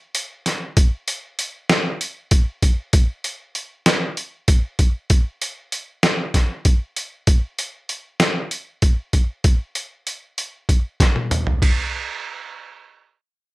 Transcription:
0.15 closed hi-hat
0.46 snare, closed hi-hat
0.77 kick, closed hi-hat
1.08 closed hi-hat
1.39 closed hi-hat
1.70 snare, closed hi-hat
2.01 closed hi-hat
2.31 kick, closed hi-hat
2.62 kick, closed hi-hat
2.93 kick, closed hi-hat
3.24 closed hi-hat
3.55 closed hi-hat
3.86 snare, closed hi-hat
4.17 closed hi-hat
4.48 kick, closed hi-hat
4.79 kick, closed hi-hat
5.10 kick, closed hi-hat
5.42 closed hi-hat
5.72 closed hi-hat
6.03 snare, closed hi-hat
6.34 kick, snare, closed hi-hat
6.65 kick, closed hi-hat
6.96 closed hi-hat
7.27 kick, closed hi-hat
7.59 closed hi-hat
7.89 closed hi-hat
8.20 snare, closed hi-hat
8.51 closed hi-hat
8.82 kick, closed hi-hat
9.13 kick, closed hi-hat
9.44 kick, closed hi-hat
9.75 closed hi-hat
10.07 closed hi-hat
10.38 closed hi-hat
10.69 kick, closed hi-hat
11.00 kick, snare, closed hi-hat
11.16 high tom
11.31 closed hi-hat, mid tom
11.47 floor tom
11.62 kick, ride

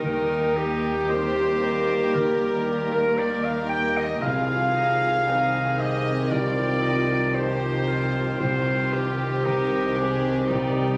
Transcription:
Already playing: D#3 D#4
0.03 D#2 D#3 A#3 G4 A#4
0.08 G3
0.57 G4
1.09 D#3 C4 D#4 G4 A#4 C5
1.62 A#4
2.14 D#2 D#3 G3 A#3 A#4
2.67 D#3
2.92 A#4
3.17 D#4 G4 A#4 D5
3.44 F5
3.68 G5
3.97 D#5
4.22 C2 C3 D#3 F3 C4 F4 G#4 F5
4.75 D#4
5.27 D#3 C4 D#4 C5 G5
5.79 G4 D#5
6.31 C2 C3 G3 F4 G4 D5
6.82 F3 D#4
7.34 D#4 G4 C5
7.88 F4
8.39 C2 C3 D#3 C4 G4 C5
8.93 G4
9.44 D#3 D#4 A#4 C5 G5
9.95 D4 G#4
10.46 G3 D#4 D5
10.50 C2 C3 G4

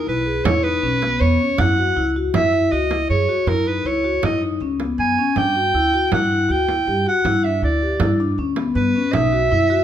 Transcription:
0.07 B1 E4 B4, frame drum
0.26 G#4
0.45 E2 E4 C#5, frame drum
0.64 D#4 B4
0.83 B1 C#4
1.02 B3, frame drum
1.21 E2 B3 C#5
1.41 C#4
1.58 F#2 E4 F#5, frame drum
1.78 F#4, frame drum
1.96 C#2 E4, frame drum
2.16 F#4
2.34 F#2 E4 E5, frame drum
2.53 E4
2.72 C#2 F#4 D#5
2.91 E4, frame drum
3.10 F#2 G#4 C#5
3.29 F#4
3.47 F#2 E4 A#4, frame drum
3.67 D#4 B4
3.85 C#2 E4 C#5
4.04 F#4
4.23 F#2 E4 D#5, frame drum
4.42 D#4
4.60 C#2 C#4, frame drum
4.80 B3, frame drum
4.98 F#2 B3 G#5
5.18 C#4
5.36 G2 D4 G5, frame drum
5.55 F#4, frame drum
5.74 D2 E4, frame drum
5.94 F#4
6.12 G2 E4 F#5, frame drum
6.31 E4
6.49 D2 F#4 G5
6.69 E4, frame drum
6.87 G2 G4
7.07 F#4 F#5
7.25 G2 E4, frame drum
7.43 D4 E5, frame drum
7.62 D2 E4 D5, frame drum
7.83 G4
8.00 G2 E4, frame drum
8.20 D4
8.38 D2 C#4
8.56 B3, frame drum
8.75 G2 B3 B4
8.95 C#4
9.13 B1 D#4 E5, frame drum
9.32 F#4, frame drum
9.51 F#2 E4, frame drum
9.70 F#4

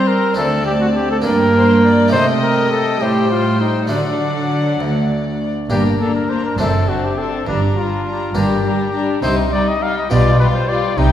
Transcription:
Already playing: G3 A#3 C4 D4 C5 A#5
0.07 A#4
0.34 D2 C4 D4 A4 D5 A5
0.65 G4
0.81 F#4
0.95 G4
1.11 A4
1.22 G2 A#3 D4 A#4 D5 G5
1.55 C5
1.84 D5
2.08 A3 D#4 C5
2.13 C3 A3 D#5 G5
2.42 A#4
2.71 A4
3.01 A2 G3 G4 C5
3.31 F4
3.61 D#4
3.87 D3 F#3 A3 D4 D5 F#5
4.80 D2
5.70 G1 G2 A#3 D4 G4 A#5
6.00 A#3 D4 A4 A#5
6.15 A#4
6.29 A#3 D4 C5 A#5
6.45 A#4
6.58 F#1 F#2 A3 C4 D4 A4 A5
6.88 C4 D4 F#4 A5
7.04 G4
7.17 C4 D4 A4 A5
7.47 G1 G2 G3 D4 A#5
7.75 G3 D4 F4 A#5
8.05 G3 D4 A#5
8.34 G1 G2 G3 A#3 D4 G4 A#5
8.63 G3 D4 A#5
8.93 G3 D4 A#5
9.22 C2 C3 G3 C4 D#4 C5 G5
9.52 G3 D#4 D5 G5
9.68 D#5
9.81 G3 D#4 F5 G5
9.98 D#5
10.10 B1 B2 G3 F4 G4 D5 G5
10.39 G3 F4 B4 G5
10.55 C5
10.69 G3 F4 D5 G5
10.97 C2 C3 G3 D#4 G4 G5

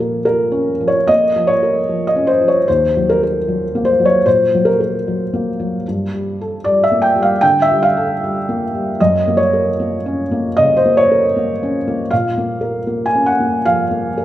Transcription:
Already playing: A#2 F3
0.00 A#4
0.25 F3 A#4
0.52 C#4
0.80 F3
0.88 C#5
1.07 A#3 D#5
1.36 F3
1.47 C#5
1.63 A#4
1.89 F3
2.07 D#5
2.16 C#4
2.27 C5
2.41 F3
2.48 C#5
2.68 D#2 C5
2.97 F#3
3.09 A#4
3.23 A#4
3.48 F#3
3.75 A#3
3.85 C5
4.00 F#3
4.05 C#5
4.26 A#2 C5
4.55 F#3
4.65 A#4
4.80 A#4
5.08 F#3
5.33 A#3
5.60 F#3
5.88 G2
6.14 G3
6.41 A4
6.64 G3 D5
6.84 E5
6.92 A#3
7.02 G5
7.16 G3
7.22 F5
7.41 D3 G5
7.62 E5
7.71 G3
7.83 F5
7.97 A4
8.24 G3
8.49 A#3
8.74 G3
9.00 F#2 D#5
9.28 A#3
9.37 C#5
9.53 A#4
9.80 A#3
10.06 C#4
10.31 A#3
10.57 C#3 D#5
10.77 C5
10.85 A#3
10.97 C#5
11.11 A#4
11.36 A#3
11.63 C#4
11.88 A#3
12.11 A#2 F5
12.38 A#3
12.61 A#4
12.87 A#3
13.06 G#5
13.15 C#4
13.26 F#5
13.40 A#3
13.65 F3 F5
13.91 A#3
14.18 A#4

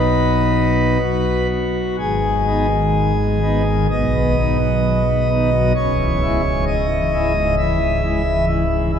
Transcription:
Already playing: B1 B2 F#3 B3 D#4 B4
1.02 F#4
1.99 G#1 G#2 G#4
2.23 G#3
2.47 B3 D#4
2.70 D#3
3.17 G#3
3.42 B3 D#4
3.66 D#3
3.91 B1 B2 D#5
4.15 B3
4.38 B3 D#4
4.61 F#3
5.07 B3
5.31 B3 D#4
5.53 F#3
5.76 C#1 C#2 C#5
5.99 E3
6.22 G#3 E4
6.45 G#2
6.67 D#5
6.90 E3
7.13 G#3 E4
7.35 G#2
7.58 E3 E5
7.81 G#2
8.03 G#3 E4
8.26 E3
8.48 E4
8.70 G#2
8.93 G#3 E4

